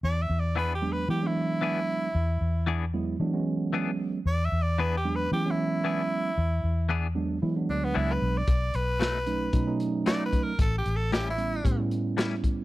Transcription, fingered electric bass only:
X:1
M:4/4
L:1/8
Q:"Swing 16ths" 1/4=114
K:Emix
V:1 name="Fingered electric bass" clef=bass
E,, E,,3 E,4 | E,, E,,3 E,4 | E,, E,,3 E,4 | E,, E,,3 E, D,, C,, B,,, |
B,,, B,,,3 B,,4 | A,,, A,,,3 A,,4 |]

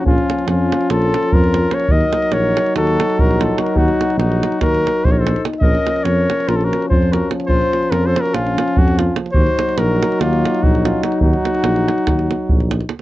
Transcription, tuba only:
X:1
M:9/8
L:1/8
Q:3/8=97
K:none
V:1 name="Tuba" clef=bass
_B,,, z F,,2 B,,,2 F,,3 | _E,, z _B,,,2 E,,2 B,,,3 | _E,, z _B,,,2 E,,2 B,,,3 | _B,,, z F,,2 B,,,2 F,,3 |
_B,,, z F,,2 B,,,2 F,,3 | _E,, z _B,,,2 E,,2 B,,,3 | _E,, z _B,,,2 E,,2 B,,,3 |]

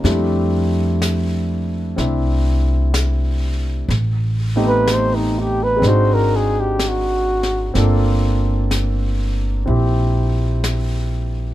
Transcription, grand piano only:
X:1
M:4/4
L:1/8
Q:"Swing" 1/4=62
K:F
V:1 name="Grand piano"
[G,A,CDE]4 [CDE]4 | z [A,=B,C_EG]3 [^G,^B,D^D^F]4 | [B,CDFA]4 [CEG]4 |]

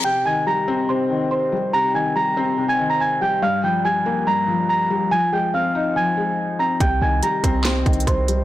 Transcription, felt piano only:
X:1
M:4/4
L:1/8
Q:1/4=142
K:Cm
V:1 name="Felt piano" clef=bass
C, E, G, C C, E,2 G, | C, E, G, C C, E,2 G, | G,, F, G, B, G,, F,2 G, | F, A, C E F, A,2 C |
C, E, G, C C, E,2 G, |]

